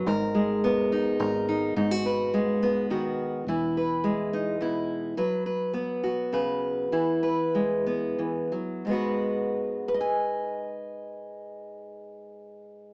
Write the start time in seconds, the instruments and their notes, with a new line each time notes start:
Already playing: steel-string acoustic guitar B3
0.06 fingered electric bass G#1, steel-string acoustic guitar G#2 A#4
0.35 steel-string acoustic guitar G#3
0.64 steel-string acoustic guitar B3
0.92 steel-string acoustic guitar D#4
1.20 fingered electric bass G#1, steel-string acoustic guitar A#4
1.49 steel-string acoustic guitar D#4
1.76 fingered electric bass G#1, steel-string acoustic guitar G#2 D#4
1.91 steel-string acoustic guitar F#4
2.06 steel-string acoustic guitar B4
2.34 steel-string acoustic guitar G#3
2.63 steel-string acoustic guitar B3
2.90 steel-string acoustic guitar D#3 F#4
3.47 fingered electric bass E1, steel-string acoustic guitar E3 E4
3.77 steel-string acoustic guitar B4
4.04 steel-string acoustic guitar G#3
4.33 steel-string acoustic guitar D#4
4.61 steel-string acoustic guitar B2 E4
5.17 steel-string acoustic guitar F#3 B4
5.46 steel-string acoustic guitar B4
5.74 steel-string acoustic guitar B3
6.04 steel-string acoustic guitar F#4
6.33 steel-string acoustic guitar C#3 B4
6.92 steel-string acoustic guitar E3 E4
7.23 steel-string acoustic guitar B4
7.55 steel-string acoustic guitar G#3
7.86 steel-string acoustic guitar B3
8.19 steel-string acoustic guitar E3
8.52 steel-string acoustic guitar F#3
8.85 steel-string acoustic guitar G#2 G#3
8.89 steel-string acoustic guitar B3 F#4
8.93 steel-string acoustic guitar B4
9.88 steel-string acoustic guitar B4
9.94 steel-string acoustic guitar D#5
10.01 steel-string acoustic guitar G#5